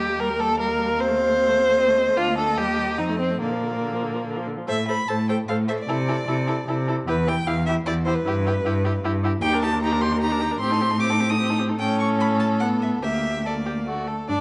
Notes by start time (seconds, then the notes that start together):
Already playing: D#2 G4 D#5
0.00 G3
0.09 A#3
0.19 G3 A#4 G5
0.30 A#3
0.39 G3 A4
0.49 A#3
0.59 G3 A#4 F5
0.69 A#3
0.78 G3
0.89 A#3
0.98 C4 C5
1.08 A3
1.18 C4
1.28 A3
1.38 C4
1.48 A3
1.58 C4
1.69 A3
1.78 C4 D#5
1.88 A3
1.98 C4
2.08 A3
2.17 D2 D4 F4
2.28 A#3
2.38 D4 A4
2.47 A#3
2.57 D#2 G3 G4
2.68 A#3
2.78 G3
2.88 A#3
2.98 F2 C4 D#4
3.09 A3
3.19 C4
3.30 A3
3.40 A#2 D3 A#3 D5
3.51 F3
3.62 D3
3.72 F3
3.82 D3
3.93 F3
4.03 D3
4.14 F3
4.25 D3
4.37 F3
4.47 D3
4.57 F3
4.67 A2 A4 C5 E5
4.88 A4 C5 B5
5.08 A2 A4 C5 A5
5.29 A4 C5 G5
5.48 A2 A4 C5 F5
5.68 A4 C5 E5
5.79 D5
5.88 C3 E4 A4
6.08 E4 A4
6.27 C3 E4 A4
6.47 E4 A4
6.68 C3 E4 A4
6.88 E4 A4
7.07 E2 E4 G4 B4
7.27 E4 G4 G5
7.47 E2 E4 G4 F5
7.66 E4 G4 E5
7.86 E2 E4 G4 D5
8.05 E4 G4 C5
8.15 B4
8.25 G2 E4 G4
8.45 E4 G4
8.64 G2 E4 G4
8.85 E4 G4
9.03 G2 E4 G4
9.23 E4 G4
9.41 D#2 D#4 G4 G5
9.53 D4 A#4
9.62 D#4 G4 A5
9.72 D4 A#4
9.82 D#4 G4 A#5
9.92 D4 A#4
10.01 D#4 G4 C6
10.11 D4 A#4
10.21 D#4 G4 A#5
10.31 D4 A#4
10.40 D#4 G4
10.51 D4 A#4
10.60 A2 C4 G4 C6
10.71 D#4 A4
10.81 C4 G4
10.91 D#4 A4
11.00 C4 G4 D6
11.10 D#4 A4
11.20 C4 G4
11.30 D#4 A4 D#6
11.40 C4 G4
11.50 D#4 A4
11.59 C4 G4
11.69 D#4 A4
11.79 A2 C#4 A4 G5
12.00 C#6
12.20 B5
12.40 A5
12.60 B3 F#5
12.82 E5
13.02 D2 A#3 G4 E5
13.45 A#3 A4 D5
13.66 G4
13.87 A3 F#4
14.07 A4
14.28 G2 D4 D5